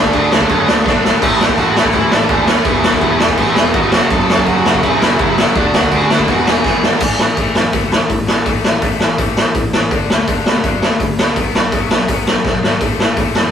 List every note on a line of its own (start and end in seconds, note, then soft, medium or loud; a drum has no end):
0.00 0.12 D3 loud
0.00 0.14 A3 loud
0.00 0.14 D4 loud
0.00 0.30 D4 medium
0.00 0.33 D5 medium
0.04 kick loud
0.13 0.27 D2 medium
0.13 0.31 D3 medium
0.13 0.32 A3 medium
0.13 0.32 D4 medium
0.13 kick loud
0.13 crash medium
0.32 0.46 D2 loud
0.32 0.48 D3 medium
0.32 0.49 A3 loud
0.32 0.48 C#4 medium
0.32 0.50 D4 medium
0.32 0.48 C#5 medium
0.32 snare loud
0.41 kick medium
0.49 0.63 F#2 loud
0.49 0.85 D3 loud
0.49 0.85 A3 loud
0.49 0.60 C#4 medium
0.49 0.86 D4 loud
0.49 0.59 C#5 medium
0.49 kick loud
0.49 crash medium
0.60 0.67 C#5 medium
0.67 0.82 D2 medium
0.67 0.84 D3 medium
0.67 0.85 A3 medium
0.67 0.85 D4 medium
0.67 1.01 D4 medium
0.67 1.02 D5 medium
0.67 snare loud
0.85 1.13 B1 medium
0.85 1.03 D3 medium
0.85 1.03 A3 medium
0.85 1.04 D4 medium
0.85 kick loud
0.85 snare medium
1.04 1.21 D3 medium
1.04 1.21 A3 loud
1.04 1.21 D4 medium
1.04 snare medium
1.22 1.50 A1 medium
1.22 1.56 A2 loud
1.22 1.58 E3 loud
1.22 1.58 A3 loud
1.22 kick loud
1.22 crash loud
1.41 snare loud
1.49 kick medium
1.57 1.72 A1 medium
1.57 1.75 A2 medium
1.57 1.75 E3 loud
1.57 1.76 A3 loud
1.57 1.75 F#4 medium
1.57 1.78 F#5 loud
1.57 kick medium
1.57 crash medium
1.76 1.90 A1 loud
1.76 1.93 A2 medium
1.76 1.93 E3 loud
1.76 1.94 A3 medium
1.76 1.94 E4 medium
1.76 1.95 E5 loud
1.76 snare loud
1.85 kick loud
1.93 2.08 D2 loud
1.93 2.28 A2 loud
1.93 2.28 E3 loud
1.93 2.29 A3 loud
1.93 2.12 E4 medium
1.93 2.14 E5 loud
1.93 kick loud
1.93 crash medium
2.11 2.25 A1 medium
2.11 2.29 A2 medium
2.11 2.30 E3 medium
2.11 2.29 A3 medium
2.11 2.47 D4 medium
2.11 2.51 D5 loud
2.11 snare loud
2.29 2.57 D#2 medium
2.29 2.46 A2 medium
2.29 2.47 E3 medium
2.29 2.48 A3 loud
2.29 kick loud
2.29 crash medium
2.47 2.65 A2 medium
2.47 2.65 E3 loud
2.47 2.66 A3 loud
2.47 2.66 C#4 medium
2.47 2.67 C#5 medium
2.47 snare loud
2.64 2.93 E1 medium
2.64 3.00 E2 loud
2.64 3.01 B2 loud
2.64 3.02 E3 loud
2.64 3.17 E4 medium
2.64 3.17 E5 loud
2.64 kick loud
2.64 crash medium
2.84 snare loud
2.93 kick medium
3.01 3.16 E1 medium
3.01 3.19 E2 medium
3.01 3.19 B2 loud
3.01 3.20 E3 loud
3.01 kick medium
3.01 crash medium
3.20 3.34 E1 loud
3.20 3.37 E2 medium
3.20 3.38 B2 medium
3.20 3.38 E3 medium
3.20 snare loud
3.29 kick medium
3.37 3.52 A1 loud
3.37 3.73 E2 loud
3.37 3.74 B2 loud
3.37 3.75 E3 loud
3.37 kick medium
3.37 crash medium
3.55 3.71 E1 medium
3.55 3.72 E2 medium
3.55 3.73 B2 medium
3.55 3.73 E3 medium
3.55 3.73 G#4 medium
3.55 3.72 G#5 loud
3.55 snare loud
3.72 3.88 G#1 medium
3.72 3.92 E2 medium
3.72 3.92 B2 medium
3.72 3.92 E3 medium
3.72 4.08 F#4 medium
3.72 4.10 F#5 loud
3.72 kick loud
3.72 crash medium
3.92 4.07 F#1 loud
3.92 4.09 F#2 loud
3.92 4.10 C#3 loud
3.92 4.11 F#3 loud
3.92 snare loud
4.10 4.39 F#1 loud
4.10 4.46 F#2 loud
4.10 4.47 C#3 loud
4.10 4.47 F#3 loud
4.10 4.45 A4 medium
4.10 4.44 A5 loud
4.10 kick loud
4.10 crash medium
4.29 snare loud
4.38 kick medium
4.46 4.61 F#1 medium
4.46 4.65 F#2 medium
4.46 4.65 C#3 loud
4.46 4.66 F#3 loud
4.46 4.82 F#4 medium
4.46 4.81 F#5 medium
4.46 kick medium
4.46 crash medium
4.65 4.79 F#1 loud
4.65 4.82 F#2 medium
4.65 4.83 C#3 medium
4.65 4.83 F#3 loud
4.65 snare loud
4.74 kick medium
4.83 4.97 B1 loud
4.83 5.18 F#2 loud
4.83 5.19 C#3 loud
4.83 5.19 F#3 loud
4.83 5.52 E4 medium
4.83 5.52 E5 medium
4.83 kick loud
4.83 crash medium
5.01 5.15 F#1 medium
5.01 5.38 F#2 medium
5.01 5.38 C#3 medium
5.01 5.37 F#3 medium
5.01 snare loud
5.19 5.47 F#1 medium
5.19 5.37 F#2 medium
5.19 5.38 C#3 medium
5.19 5.38 F#3 loud
5.19 kick loud
5.19 crash medium
5.38 5.55 F#2 medium
5.38 5.55 C#3 loud
5.38 5.56 F#3 loud
5.38 snare loud
5.55 5.83 D2 loud
5.55 5.91 D3 loud
5.55 5.92 A3 loud
5.55 5.74 D4 medium
5.55 5.92 D4 loud
5.55 5.75 D5 medium
5.55 kick loud
5.55 crash medium
5.74 6.09 F#4 medium
5.74 6.11 F#5 medium
5.74 snare loud
5.83 kick loud
5.91 6.06 D2 medium
5.91 6.09 D3 medium
5.91 6.09 A3 loud
5.91 6.10 D4 loud
5.91 kick loud
5.91 crash medium
6.10 6.24 D2 medium
6.10 6.27 D3 loud
6.10 6.28 A3 loud
6.10 6.28 D4 loud
6.10 6.28 E4 medium
6.10 6.28 E5 medium
6.10 snare loud
6.19 kick medium
6.27 6.42 E1 medium
6.27 6.63 E2 loud
6.27 6.64 B2 loud
6.27 6.65 E3 loud
6.27 6.47 F#4 medium
6.27 kick loud
6.27 crash medium
6.31 6.47 F#5 medium
6.47 6.61 E1 medium
6.47 6.82 G#4 medium
6.47 6.82 G#5 medium
6.47 snare loud
6.64 6.92 G#1 medium
6.64 6.80 E2 medium
6.64 6.81 B2 medium
6.64 6.82 E3 medium
6.64 kick loud
6.64 snare medium
6.81 6.99 E2 medium
6.81 7.00 B2 loud
6.81 7.00 E3 medium
6.81 snare loud
7.00 7.14 A1 medium
7.00 7.18 A2 medium
7.00 7.18 E3 loud
7.00 7.19 A3 loud
7.00 kick loud
7.00 crash loud
7.18 7.32 A1 medium
7.18 7.35 A2 medium
7.18 7.36 E3 medium
7.18 snare loud
7.36 7.51 A1 medium
7.36 7.53 A2 medium
7.36 7.54 E3 medium
7.36 7.55 A3 loud
7.36 kick loud
7.36 open hi-hat soft
7.55 7.69 F#2 medium
7.55 7.72 A2 medium
7.55 7.72 E3 medium
7.55 snare loud
7.73 8.00 D2 medium
7.73 7.90 A2 loud
7.73 7.90 E3 loud
7.73 7.91 A3 loud
7.73 kick loud
7.73 open hi-hat medium
7.91 8.08 A2 medium
7.91 8.08 E3 medium
7.91 snare loud
8.09 8.26 A2 medium
8.09 8.23 A2 medium
8.09 8.26 E3 medium
8.09 kick loud
8.09 open hi-hat medium
8.27 8.42 A1 medium
8.27 8.44 A2 medium
8.27 8.44 E3 medium
8.27 snare loud
8.45 8.60 A1 medium
8.45 8.63 A2 loud
8.45 8.63 E3 loud
8.45 8.64 A3 loud
8.45 kick loud
8.45 open hi-hat medium
8.64 8.78 A1 medium
8.64 8.80 A2 medium
8.64 8.81 E3 medium
8.64 snare loud
8.81 8.96 A1 medium
8.81 8.99 A2 medium
8.81 9.00 E3 loud
8.81 9.00 A3 medium
8.81 kick loud
8.81 open hi-hat medium
9.00 9.14 A1 medium
9.00 9.17 A2 medium
9.00 9.17 E3 medium
9.00 snare loud
9.18 9.45 A1 medium
9.18 9.36 A2 medium
9.18 9.36 E3 loud
9.18 9.37 A3 loud
9.18 kick loud
9.18 open hi-hat medium
9.37 9.53 A2 medium
9.37 9.54 E3 medium
9.37 snare loud
9.55 9.68 A1 medium
9.55 9.72 A2 medium
9.55 9.72 E3 medium
9.55 kick loud
9.55 open hi-hat medium
9.73 9.91 A1 medium
9.73 9.90 A2 medium
9.73 9.90 E3 medium
9.73 snare loud
9.91 10.05 D2 loud
9.91 10.08 D3 loud
9.91 10.09 A3 loud
9.91 10.09 D4 loud
9.91 kick loud
9.91 open hi-hat medium
10.09 10.23 D2 medium
10.09 10.27 D3 medium
10.09 10.27 A3 medium
10.09 snare loud
10.28 10.41 D2 medium
10.28 10.45 D3 medium
10.28 10.45 A3 loud
10.28 10.46 D4 loud
10.28 kick loud
10.28 open hi-hat medium
10.45 10.59 B2 loud
10.45 10.63 D3 medium
10.45 10.63 A3 medium
10.45 snare loud
10.64 10.90 F#2 medium
10.64 10.81 D3 loud
10.64 10.82 A3 loud
10.64 10.82 D4 loud
10.64 kick loud
10.64 open hi-hat soft
10.82 10.99 D3 medium
10.82 10.99 A3 medium
10.82 snare loud
11.00 11.13 D3 medium
11.00 11.17 D3 medium
11.00 11.17 A3 medium
11.00 kick medium
11.00 open hi-hat medium
11.18 11.32 D2 medium
11.18 11.35 D3 medium
11.18 11.35 A3 medium
11.18 snare loud
11.36 11.50 B1 medium
11.36 11.53 B2 loud
11.36 11.54 F#3 loud
11.36 11.54 B3 loud
11.36 kick loud
11.36 open hi-hat medium
11.55 11.68 B1 medium
11.55 11.71 B2 medium
11.55 11.71 F#3 medium
11.55 snare loud
11.72 11.85 B1 medium
11.72 11.90 B2 medium
11.72 11.90 F#3 medium
11.72 11.91 B3 loud
11.72 kick loud
11.72 open hi-hat medium
11.91 12.04 B1 medium
11.91 12.07 B2 medium
11.91 12.07 F#3 medium
11.91 snare loud
12.08 12.35 B1 medium
12.08 12.26 B2 medium
12.08 12.26 F#3 loud
12.08 12.26 B3 loud
12.08 kick loud
12.08 open hi-hat medium
12.27 12.43 B2 medium
12.27 12.43 F#3 medium
12.27 snare loud
12.45 12.58 B1 medium
12.45 12.61 B2 medium
12.45 12.62 F#3 medium
12.45 kick loud
12.45 snare medium
12.63 12.81 G#1 medium
12.63 12.79 B2 medium
12.63 12.80 F#3 medium
12.63 snare loud
12.81 12.94 A1 medium
12.81 12.98 A2 medium
12.81 12.99 E3 loud
12.81 12.99 A3 loud
12.81 kick loud
12.81 open hi-hat medium
12.99 13.12 A1 loud
12.99 13.16 A2 medium
12.99 13.16 E3 medium
12.99 snare loud
13.17 13.30 A1 medium
13.17 13.34 A2 loud
13.17 13.35 E3 medium
13.17 13.35 A3 loud
13.17 kick loud
13.17 open hi-hat medium
13.35 13.49 F#2 loud
13.35 13.51 A2 medium
13.35 13.51 E3 medium
13.35 snare loud